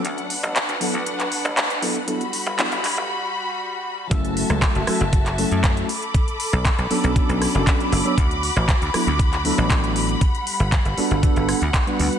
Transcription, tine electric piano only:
X:1
M:4/4
L:1/16
Q:1/4=118
K:F#phr
V:1 name="Tine electric piano"
z6 [F,B,DEA] z6 z [F,B,DEA] z | [F,B,DEA] z3 [F,B,DEA] z8 z3 | [F,A,CEA]6 [F,A,CEA] z3 [F,A,CEA]4 z2 | z6 [F,B,CDA]2 [F,B,CDA]3 [F,B,CDA]4 [F,B,CDA] |
z6 [F,B,DEA] z3 [F,B,DEA]6 | z6 [G,B,DFA]2 [G,B,DFA]3 z2 [G,B,DFB]3 |]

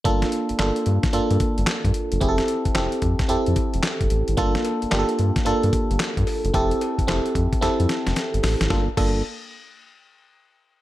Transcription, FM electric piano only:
X:1
M:4/4
L:1/16
Q:"Swing 16ths" 1/4=111
K:Gdor
V:1 name="FM electric piano"
[B,DFA]3 z [B,DFA]3 z [B,DFA]6 z2 | [CEG_A=A]3 z [CEGA]3 z [CEGA]6 z2 | [B,DFA]3 z [B,DFGA]3 z [B,DFA]6 z2 | [CEGA]3 z [CEGA]3 z [CEGA]6 z2 |
[B,DFA]2 [B,DFA]2 z12 |]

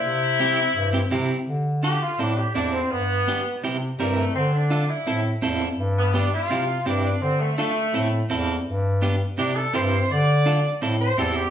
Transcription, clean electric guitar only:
X:1
M:4/4
L:1/8
Q:1/4=167
K:Dm
V:1 name="Clean electric guitar"
z2 [CEG] z2 [CEG] [CEG] z | z2 [DFA] z [CEA] z [CEA] z | z2 [=B,DG] z [CEG] z [CE_B] z | z2 [DFA] z [CEA] z [CEA] z |
z2 [=B,DG] z [CEG] z [CEG] z | z2 [DFA] z [CEA] z [CEA] z | z2 [=B,DG] z [CEG] z [CEG] z | z2 [DFA] z [CEA] z [CEG] z |]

